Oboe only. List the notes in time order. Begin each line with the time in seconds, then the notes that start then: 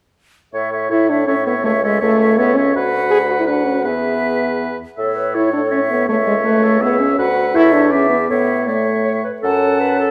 0.54 C#5
0.72 C#5
0.91 C#5
1.09 C#5
1.28 C#5
1.46 C#5
1.66 C#5
1.83 C#5
2.00 C#5
2.19 C#5
2.38 C#5
2.57 C#5
2.76 B4
3.47 B4
3.84 B4
4.98 E5
5.35 C#5
5.70 C#5
6.08 C#5
6.82 E5
7.18 B4
7.55 C#5
7.91 D5
8.30 C#5
8.67 C#5
9.45 F#5